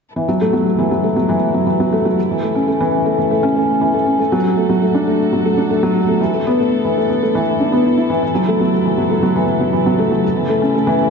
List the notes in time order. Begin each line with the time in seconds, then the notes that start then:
0.16 C#3 E3 F#3 E4 A4
0.28 F#3
0.41 A3
0.53 F#3
0.78 E3
0.91 F#3
1.04 A3
1.16 F#3
1.29 E3
1.54 F#3
1.67 E3
1.80 F#3
1.93 A3
2.05 F#3
2.17 C#3 A3
2.31 E3
2.43 A3
2.55 C#4
2.68 A3
2.81 E3
3.06 A3
3.18 E3
3.31 A3
3.43 C#4
3.56 A3
3.81 E3
3.94 A3
4.06 C#4
4.18 D3 A3 F#4
4.32 F#3
4.57 A3
4.69 F#3
4.82 A3
4.95 D4
5.07 A3
5.33 F#3
5.45 A3
5.57 D4
5.70 A3
5.83 F#3
6.08 A3
6.21 E3 B3 E4
6.34 A3
6.47 B3
6.60 A3
6.85 E3
6.98 A3
7.09 B3
7.23 A3
7.35 E3
7.60 D4
7.72 B3
7.85 E4
7.97 E4
8.10 E3
8.22 C#3 E3 F#3
8.35 F#3
8.48 A3
8.60 F#3
8.85 E3
8.97 F#3
9.10 A3
9.23 F#3
9.36 E3
9.60 F#3
9.73 E3
9.86 F#3
9.99 A3
10.11 F#3
10.24 A3 E4
10.37 E3
10.49 A3
10.62 C#4
10.75 A3
10.87 E3